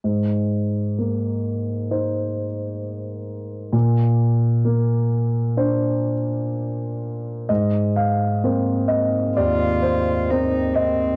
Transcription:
<<
  \new Staff \with { instrumentName = "Cello" } { \time 4/4 \key aes \lydian \tempo 4 = 65 r1 | r1 | r2 f'4 ees'8 c'8 | }
  \new Staff \with { instrumentName = "Grand piano" } { \time 4/4 \key aes \lydian r1 | r1 | ees''8 f''4 ees''8 d''8 c''4 ees''8 | }
  \new Staff \with { instrumentName = "Grand piano" } { \time 4/4 \key aes \lydian aes,4 bes4 <ees' c''>2 | bes,4 bes4 <d' c''>2 | aes,4 <bes c' c''>4 ees,4 <bes c' c''>4 | }
>>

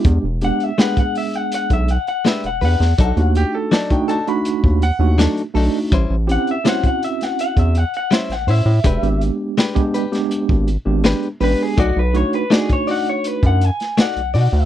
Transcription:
<<
  \new Staff \with { instrumentName = "Clean electric guitar" } { \time 4/4 \key e \mixolydian \tempo 4 = 82 r8 fis''16 e''16 fis''16 fis''16 e''16 fis''16 fis''16 e''16 fis''16 fis''16 e''16 fis''16 fis''8~ | fis''8 r2. r8 | r8 fis''16 e''16 fis''16 fis''16 e''16 fis''16 fis''16 e''16 fis''16 fis''16 e''16 fis''16 e''8~ | e''8 r2. b'16 gis'16 |
fis'16 b'16 cis''16 b'16 gis'16 cis''16 fis''16 cis''16 b'16 fis''16 gis''8 fis''4 | }
  \new Staff \with { instrumentName = "Upright piano" } { \time 4/4 \key e \mixolydian r1 | r8 g'16 a'16 d''16 g''16 a''16 b''8. fis''8 r4 | r1 | r1 |
r1 | }
  \new Staff \with { instrumentName = "Clean electric guitar" } { \time 4/4 \key e \mixolydian r4 <gis d' g' b'>8 r4. <gis d' g' b'>8 <d' g' b'>8 | <fis d' dis' a'>8 r8 <fis d' dis' a'>8 <d' dis' a'>8 r4 <fis d' dis' a'>8 <d' dis' a'>8 | <g cis' e' bis'>8 r8 <g cis' e' bis'>8 r4. <g cis' e' bis'>8 <cis' e' bis'>8 | <gis d' g' b'>8 r8 <gis d' g' b'>8 <d' g' b'>8 r4 <gis d' g' b'>8 <d' g' b'>8 |
<a dis' fis' d''>8 r8 <a dis' fis' d''>8 <dis' fis' d''>8 r4 <a dis' fis' d''>8 <dis' fis' d''>8 | }
  \new Staff \with { instrumentName = "Tine electric piano" } { \time 4/4 \key e \mixolydian <gis b d' g'>16 r16 <gis b d' g'>8 <gis b d' gis'>4. r4. | r16 <a d' dis' fis'>8. r16 <a d' dis' fis'>8 <a d' dis' fis'>8. r16 <a d' dis' fis'>8 r16 <a d' dis' fis'>8 | r8 <bis cis' e' g'>8 <bis cis' e' fis'>4. r4. | r16 <gis b d' g'>8. r16 <gis b d' g'>8 <gis b d' g'>8. r16 <gis b d' g'>8 r16 <gis b d' g'>8 |
r8 <a d' dis' fis'>8 <a d' dis' fis'>4. r4. | }
  \new Staff \with { instrumentName = "Analog synth bass" } { \clef bass \time 4/4 \key e \mixolydian e,16 e,,8 r4. b,,8 r8 e,,16 e,16 e,16 | b,,16 dis,8 r4. dis,8 dis,8 r16 b,,16 r16 | a,,16 a,,8 r4. e,8 r8 a,,16 a,16 a,16 | e,,16 gis,,8 r4. gis,,8 gis,,8 r16 a,,16 r16 |
b,,16 b,,8 r4. fis,8 r8 b,,16 b,16 d,16 | }
  \new DrumStaff \with { instrumentName = "Drums" } \drummode { \time 4/4 <hh bd>8 hh16 hh16 <hh sn>16 <hh bd>16 hho16 hh16 hh16 <hh bd>16 hh16 hh16 <hh sn>16 hh16 hho16 sn16 | <hh bd>16 hh16 hh8 <hh sn>16 <hh bd>16 hh16 hh16 hh16 bd16 hh8 <hh sn>16 hh16 hho8 | <hh bd>8 hh16 hh16 <hh sn>16 <hh bd>16 hh16 <hh sn>16 hh16 <hh bd>16 hh16 hh16 <hh sn>16 <hh sn>16 hho8 | <hh bd>16 hh16 hh8 <hh sn>16 <hh bd>16 hh16 <hh sn>16 hh16 bd16 hh8 <hh sn>16 hh16 hho8 |
<hh bd>8 hh16 hh16 <hh sn>16 <hh bd>16 hho16 hh16 hh16 <hh bd>16 hh16 <hh sn>16 <hh sn>16 hh16 hho8 | }
>>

